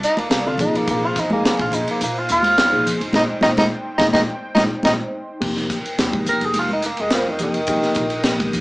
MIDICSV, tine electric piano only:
0, 0, Header, 1, 2, 480
1, 0, Start_track
1, 0, Tempo, 567108
1, 750, Time_signature, 4, 2, 24, 8
1, 7285, End_track
2, 0, Start_track
2, 0, Title_t, "Tine electric piano"
2, 0, Program_c, 0, 4
2, 391, Note_on_c, 0, 65, 67
2, 392, Note_on_c, 0, 69, 73
2, 393, Note_on_c, 0, 50, 68
2, 393, Note_on_c, 0, 55, 62
2, 396, Note_on_c, 0, 60, 63
2, 500, Note_on_c, 0, 58, 67
2, 501, Note_on_c, 0, 53, 71
2, 502, Note_on_c, 0, 48, 78
2, 504, Note_on_c, 0, 68, 81
2, 506, Note_off_c, 0, 65, 0
2, 506, Note_off_c, 0, 69, 0
2, 506, Note_on_c, 0, 63, 71
2, 507, Note_off_c, 0, 50, 0
2, 507, Note_off_c, 0, 55, 0
2, 509, Note_off_c, 0, 60, 0
2, 985, Note_off_c, 0, 53, 0
2, 985, Note_off_c, 0, 58, 0
2, 986, Note_off_c, 0, 48, 0
2, 987, Note_off_c, 0, 68, 0
2, 988, Note_off_c, 0, 63, 0
2, 1109, Note_on_c, 0, 53, 69
2, 1116, Note_on_c, 0, 58, 66
2, 1116, Note_on_c, 0, 68, 80
2, 1118, Note_on_c, 0, 48, 70
2, 1118, Note_on_c, 0, 63, 68
2, 1705, Note_off_c, 0, 53, 0
2, 1708, Note_off_c, 0, 58, 0
2, 1708, Note_off_c, 0, 68, 0
2, 1710, Note_off_c, 0, 48, 0
2, 1710, Note_off_c, 0, 63, 0
2, 2302, Note_on_c, 0, 63, 61
2, 2303, Note_on_c, 0, 48, 67
2, 2304, Note_on_c, 0, 58, 61
2, 2306, Note_on_c, 0, 53, 64
2, 2306, Note_on_c, 0, 68, 77
2, 2534, Note_off_c, 0, 48, 0
2, 2534, Note_off_c, 0, 58, 0
2, 2534, Note_off_c, 0, 63, 0
2, 2535, Note_off_c, 0, 68, 0
2, 2536, Note_off_c, 0, 53, 0
2, 2643, Note_on_c, 0, 63, 99
2, 2648, Note_on_c, 0, 58, 94
2, 2649, Note_on_c, 0, 56, 94
2, 2736, Note_off_c, 0, 63, 0
2, 2738, Note_off_c, 0, 58, 0
2, 2739, Note_off_c, 0, 56, 0
2, 2890, Note_on_c, 0, 58, 96
2, 2895, Note_on_c, 0, 56, 87
2, 2898, Note_on_c, 0, 63, 89
2, 2980, Note_off_c, 0, 58, 0
2, 2982, Note_off_c, 0, 56, 0
2, 2984, Note_off_c, 0, 63, 0
2, 3023, Note_on_c, 0, 63, 99
2, 3024, Note_on_c, 0, 56, 105
2, 3028, Note_on_c, 0, 58, 98
2, 3100, Note_off_c, 0, 56, 0
2, 3100, Note_off_c, 0, 63, 0
2, 3102, Note_off_c, 0, 58, 0
2, 3371, Note_on_c, 0, 63, 103
2, 3372, Note_on_c, 0, 56, 100
2, 3373, Note_on_c, 0, 58, 100
2, 3460, Note_off_c, 0, 63, 0
2, 3461, Note_off_c, 0, 56, 0
2, 3461, Note_off_c, 0, 58, 0
2, 3493, Note_on_c, 0, 56, 96
2, 3496, Note_on_c, 0, 58, 96
2, 3496, Note_on_c, 0, 63, 98
2, 3574, Note_off_c, 0, 56, 0
2, 3576, Note_off_c, 0, 58, 0
2, 3576, Note_off_c, 0, 63, 0
2, 3856, Note_on_c, 0, 58, 95
2, 3858, Note_on_c, 0, 56, 98
2, 3860, Note_on_c, 0, 63, 101
2, 3943, Note_off_c, 0, 58, 0
2, 3944, Note_off_c, 0, 56, 0
2, 3945, Note_off_c, 0, 63, 0
2, 4091, Note_on_c, 0, 63, 93
2, 4095, Note_on_c, 0, 58, 97
2, 4098, Note_on_c, 0, 56, 103
2, 4179, Note_off_c, 0, 63, 0
2, 4182, Note_off_c, 0, 58, 0
2, 4184, Note_off_c, 0, 56, 0
2, 4573, Note_on_c, 0, 53, 74
2, 4574, Note_on_c, 0, 63, 78
2, 4575, Note_on_c, 0, 58, 77
2, 4575, Note_on_c, 0, 67, 87
2, 4576, Note_on_c, 0, 48, 86
2, 4884, Note_off_c, 0, 53, 0
2, 4885, Note_off_c, 0, 48, 0
2, 4885, Note_off_c, 0, 58, 0
2, 4885, Note_off_c, 0, 63, 0
2, 4885, Note_off_c, 0, 67, 0
2, 5066, Note_on_c, 0, 48, 68
2, 5066, Note_on_c, 0, 63, 66
2, 5067, Note_on_c, 0, 53, 62
2, 5067, Note_on_c, 0, 58, 68
2, 5067, Note_on_c, 0, 67, 76
2, 5675, Note_off_c, 0, 48, 0
2, 5675, Note_off_c, 0, 53, 0
2, 5675, Note_off_c, 0, 58, 0
2, 5675, Note_off_c, 0, 63, 0
2, 5675, Note_off_c, 0, 67, 0
2, 6266, Note_on_c, 0, 58, 60
2, 6267, Note_on_c, 0, 48, 74
2, 6267, Note_on_c, 0, 53, 59
2, 6269, Note_on_c, 0, 63, 66
2, 6270, Note_on_c, 0, 67, 81
2, 6422, Note_off_c, 0, 58, 0
2, 6423, Note_off_c, 0, 48, 0
2, 6423, Note_off_c, 0, 53, 0
2, 6424, Note_off_c, 0, 63, 0
2, 6425, Note_off_c, 0, 67, 0
2, 6506, Note_on_c, 0, 53, 65
2, 6507, Note_on_c, 0, 48, 68
2, 6510, Note_on_c, 0, 58, 64
2, 6511, Note_on_c, 0, 63, 69
2, 6512, Note_on_c, 0, 67, 78
2, 6810, Note_off_c, 0, 53, 0
2, 6811, Note_off_c, 0, 48, 0
2, 6812, Note_off_c, 0, 58, 0
2, 6813, Note_off_c, 0, 63, 0
2, 6813, Note_off_c, 0, 67, 0
2, 6986, Note_on_c, 0, 48, 78
2, 6986, Note_on_c, 0, 53, 67
2, 6987, Note_on_c, 0, 63, 66
2, 6988, Note_on_c, 0, 58, 69
2, 6991, Note_on_c, 0, 67, 77
2, 7285, Note_off_c, 0, 48, 0
2, 7285, Note_off_c, 0, 53, 0
2, 7285, Note_off_c, 0, 58, 0
2, 7285, Note_off_c, 0, 63, 0
2, 7285, Note_off_c, 0, 67, 0
2, 7285, End_track
0, 0, End_of_file